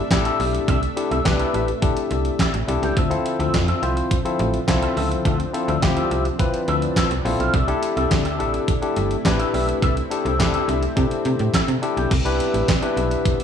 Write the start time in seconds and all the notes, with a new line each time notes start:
Already playing: C3 A3 D4 E5
0.11 A1 D4 E4 G4 A4, muted clean electric guitar stroke, kick, snare, clap, closed hi-hat
0.25 D4 G4 A4 E5, closed hi-hat
0.39 B1 D4 G4 A4 E5, open hi-hat
0.53 muted clean electric guitar stroke, closed hi-hat
0.68 C2 D4 G4 A4 E5, kick, closed hi-hat
0.82 muted clean electric guitar stroke, closed hi-hat
0.96 D4 E4 G4 A4, muted clean electric guitar stroke, closed hi-hat
1.11 C2 D4 G4 A4 E5, closed hi-hat
1.25 C2 D4 E4 G4 B4, muted clean electric guitar stroke, kick, snare, clap, closed hi-hat
1.39 D4 G4 A4 E5, closed hi-hat
1.53 A1 D4 G4 A4 E5, closed hi-hat
1.68 muted clean electric guitar stroke, closed hi-hat
1.82 D4 E4 G4 A4, muted clean electric guitar stroke, kick, closed hi-hat
1.96 muted clean electric guitar stroke, closed hi-hat
2.11 C2, closed hi-hat
2.25 muted clean electric guitar stroke, closed hi-hat
2.39 D4 G4 A4 E5, kick, snare, clap, closed hi-hat
2.54 A1, muted clean electric guitar stroke, closed hi-hat
2.68 C2 D4 E4 G4 A4, muted clean electric guitar stroke, closed hi-hat
2.82 C#2 D4 G4 A4 G5, closed hi-hat
2.97 D2 D3 F3 C4 F4 A4 E5, kick, closed hi-hat
3.10 C4 E4 F4 A4, muted clean electric guitar stroke, closed hi-hat
3.25 muted clean electric guitar stroke, closed hi-hat
3.39 D2 C4 F4 A4 E5, closed hi-hat
3.54 F2, muted clean electric guitar stroke, kick, snare, clap, closed hi-hat
3.68 C4 F4 A4 E5, closed hi-hat
3.82 C2 C4 E4 F4 A4 C5 E5, closed hi-hat
3.97 muted clean electric guitar stroke, closed hi-hat
4.11 muted clean electric guitar stroke, kick, closed hi-hat
4.25 C4 E4 F4 A4, muted clean electric guitar stroke, closed hi-hat
4.39 A1, closed hi-hat
4.54 muted clean electric guitar stroke, closed hi-hat
4.67 C2 C4 E4 F4 A4, kick, snare, clap, closed hi-hat
4.82 C4 F4 A4 E5, closed hi-hat
4.96 C#2 C4 F4 A4 E5, open hi-hat
5.11 muted clean electric guitar stroke, closed hi-hat
5.25 D2 C4 D4 F4 A4 E5, kick, closed hi-hat
5.39 muted clean electric guitar stroke, closed hi-hat
5.53 C4 E4 F4 A4, muted clean electric guitar stroke, closed hi-hat
5.68 D2 C4 F4 A4 E5, closed hi-hat
5.82 D2 C4 E4 F4 G4, muted clean electric guitar stroke, kick, snare, clap, closed hi-hat
5.96 C4 F4 A4 E5, closed hi-hat
6.10 C2 C4 F4 A4 E5, closed hi-hat
6.25 muted clean electric guitar stroke, closed hi-hat
6.39 C4 E4 F4 B4, muted clean electric guitar stroke, kick, closed hi-hat
6.54 muted clean electric guitar stroke, closed hi-hat
6.67 D2 C4 F4 A4 E5, closed hi-hat
6.82 muted clean electric guitar stroke, closed hi-hat
6.96 C4 F4 A4 E5, kick, snare, clap, closed hi-hat
7.10 C2, muted clean electric guitar stroke, closed hi-hat
7.25 A#1 C4 E4 F4 A4, muted clean electric guitar stroke, open hi-hat
7.39 B1 C4 F4 A4 F5, closed hi-hat
7.53 C2 C3 A3 D4 E4 G4 A4 E5, kick, closed hi-hat
7.68 D4 E4 G4 A4, muted clean electric guitar stroke, closed hi-hat
7.82 muted clean electric guitar stroke, closed hi-hat
7.96 C2 D4 G4 A4 E5, closed hi-hat
8.10 D2, muted clean electric guitar stroke, kick, snare, clap, closed hi-hat
8.25 D4 G4 A4 E5, closed hi-hat
8.39 A1 D4 E4 G4 A4 E5, closed hi-hat
8.53 muted clean electric guitar stroke, closed hi-hat
8.68 muted clean electric guitar stroke, kick, closed hi-hat
8.82 D4 E4 G4 A4, muted clean electric guitar stroke, closed hi-hat
8.96 G1, closed hi-hat
9.11 muted clean electric guitar stroke, closed hi-hat
9.25 A1 D4 E4 G4 B4, kick, snare, clap, closed hi-hat
9.39 D4 G4 A4 E5, closed hi-hat
9.53 B1 D4 G4 A4 E5, open hi-hat
9.68 muted clean electric guitar stroke, closed hi-hat
9.82 C2 C4 D4 G4 A4 E5, kick, closed hi-hat
9.96 muted clean electric guitar stroke, closed hi-hat
10.10 D4 E4 G4 A4, muted clean electric guitar stroke, closed hi-hat
10.25 C2 D4 G4 A4 E5, closed hi-hat
10.39 D2 D4 E4 G4 A4, muted clean electric guitar stroke, kick, snare, clap, closed hi-hat
10.53 D4 G4 A4 E5, closed hi-hat
10.68 C2 D4 G4 A4 E5, closed hi-hat
10.82 muted clean electric guitar stroke, closed hi-hat
10.96 C3 D4 E4 G4 A4, muted clean electric guitar stroke, kick, closed hi-hat
11.11 muted clean electric guitar stroke, closed hi-hat
11.25 C3, closed hi-hat
11.39 A2, muted clean electric guitar stroke, closed hi-hat
11.53 D4 G4 A4 E5, kick, snare, clap, closed hi-hat
11.68 C3, muted clean electric guitar stroke, closed hi-hat
11.82 D4 E4 G4 A4, muted clean electric guitar stroke, closed hi-hat
11.96 B1 D4 G4 A4 G5, closed hi-hat
12.11 C2 C3 G3 B3 E5, kick, closed hi-hat, crash
12.25 D4 E4 G4 B4, closed hi-hat
12.40 closed hi-hat
12.54 A1, closed hi-hat
12.68 kick, snare, clap, closed hi-hat
12.82 D4 E4 G4 B4, closed hi-hat
12.97 B1, closed hi-hat
13.11 closed hi-hat
13.25 kick, closed hi-hat
13.40 closed hi-hat